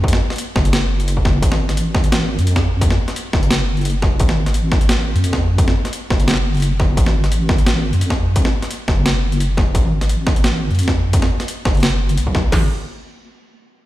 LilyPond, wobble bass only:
\new Staff \with { instrumentName = "Wobble bass" } { \clef bass \time 4/4 \key gis \dorian \tempo 4 = 173 eis,8 r4 fis,,2~ fis,,8 | gis,,2~ gis,,8. eis,4~ eis,16~ | eis,8 r4 fis,,2~ fis,,8 | gis,,2~ gis,,8. eis,4~ eis,16~ |
eis,8 r4 fis,,2~ fis,,8 | gis,,2~ gis,,8. eis,4~ eis,16~ | eis,8 r4 fis,,2~ fis,,8 | gis,,2~ gis,,8. eis,4~ eis,16~ |
eis,8 r4 fis,,4. b,,4 | gis,,8 r2. r8 | }